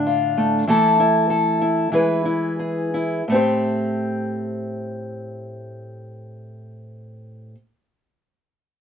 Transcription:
0.00 0.68 A2 soft
0.00 0.67 D3 medium
0.00 0.64 D4 soft
0.07 0.64 F4 soft
0.37 0.64 A3 soft
0.67 1.90 E3 medium
0.67 1.90 A3 soft
0.67 0.99 E4 soft
0.67 1.29 A4 medium
1.00 1.60 E4 soft
1.30 1.93 A4 soft
1.61 1.90 E4 soft
1.92 3.22 E3 soft
1.92 3.22 G#3 soft
1.92 2.24 E4 soft
1.92 2.58 G#4 soft
1.92 3.23 B4 soft
2.25 2.92 E4 soft
2.59 3.23 G#4 soft
2.94 3.23 E4 soft
3.28 7.54 A2 soft
3.28 7.55 A3 soft
3.28 7.56 C4 soft
3.34 7.57 G4 soft
3.34 7.57 C5 soft

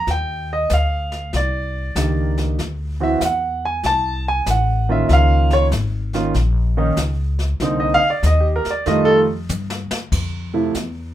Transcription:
0.07 0.68 D#2 medium
0.07 0.49 G5 medium
0.07 brush sweep soft
0.07 snare soft
0.53 0.71 D#5 medium
0.69 1.31 D2 medium
0.69 1.30 F5 medium
0.69 snare medium
0.69 hi-hat pedal medium
1.12 snare soft
1.33 1.94 C2 medium
1.33 2.35 D5 medium
1.33 brush sweep soft
1.33 snare soft
1.96 2.56 C#2 medium
1.96 2.59 D#3 medium
1.96 2.59 A#3 soft
1.96 2.59 D4 soft
1.96 2.59 G4 medium
1.96 snare medium
1.96 hi-hat pedal medium
2.38 snare soft
2.59 3.20 D2 medium
2.59 brush sweep soft
2.59 snare soft
3.00 3.19 E3 medium
3.00 3.19 B3 medium
3.00 3.19 C4 medium
3.00 3.20 F#4 medium
3.00 3.22 E5 medium
3.20 3.82 E2 medium
3.20 3.25 F5 medium
3.20 snare medium
3.20 hi-hat pedal medium
3.25 3.64 F#5 medium
3.65 3.85 G#5 medium
3.83 4.45 C2 medium
3.83 4.25 A5 loud
3.83 brush sweep soft
3.83 snare soft
4.28 4.48 G#5 loud
4.46 5.07 A1 medium
4.46 snare medium
4.46 hi-hat pedal medium
4.51 4.89 F#5 medium
4.89 5.68 D#3 medium
4.89 5.68 A#3 medium
4.89 5.69 C#4 medium
4.89 5.69 F4 medium
4.89 5.07 E5 medium
5.09 5.70 C#2 medium
5.09 5.13 E5 medium
5.09 brush sweep soft
5.09 snare soft
5.13 5.52 F5 loud
5.50 5.65 C#5 loud
5.50 snare soft
5.71 6.33 G#1 medium
5.71 snare medium
5.71 hi-hat pedal medium
6.13 6.33 D#3 medium
6.13 6.33 A#3 medium
6.13 6.33 C#4 medium
6.13 6.34 F4 medium
6.13 snare soft
6.34 6.96 A#1 medium
6.34 brush sweep soft
6.34 snare soft
6.77 6.96 D#3 medium
6.77 6.96 A#3 medium
6.77 6.96 C#4 medium
6.77 6.97 D#4 medium
6.97 7.58 C#2 medium
6.97 snare medium
6.97 hi-hat pedal medium
7.39 snare soft
7.60 7.99 C2 medium
7.60 7.99 D3 medium
7.60 7.99 A#3 medium
7.60 7.99 C4 medium
7.60 7.99 D#4 medium
7.60 brush sweep medium
7.60 snare soft
7.80 8.01 D#5 medium
7.94 8.09 F5 loud
8.10 8.22 D5 medium
8.23 8.62 D#2 medium
8.23 8.45 D#5 medium
8.23 snare medium
8.23 hi-hat pedal soft
8.40 8.63 G4 medium
8.56 8.71 A#4 medium
8.65 muted upright bass stroke soft
8.65 snare soft
8.71 8.83 D5 medium
8.86 9.47 F2 medium
8.86 9.24 D#3 medium
8.86 9.24 G3 medium
8.86 9.24 A3 medium
8.86 9.24 F4 medium
8.86 9.07 D#5 loud
8.86 brush sweep soft
8.86 snare soft
9.05 9.18 A4 loud
9.49 9.88 G2 medium
9.49 hi-hat pedal medium
9.49 high tom soft
9.70 snare medium
9.91 muted upright bass stroke soft
9.91 snare medium
10.12 10.73 F2 medium
10.12 brush sweep soft
10.12 kick medium
10.12 snare soft
10.12 crash medium
10.54 10.73 C3 medium
10.54 10.73 F3 medium
10.54 10.73 A3 medium
10.54 10.73 E4 medium
10.75 11.14 E2 medium
10.75 snare soft
10.75 hi-hat pedal medium

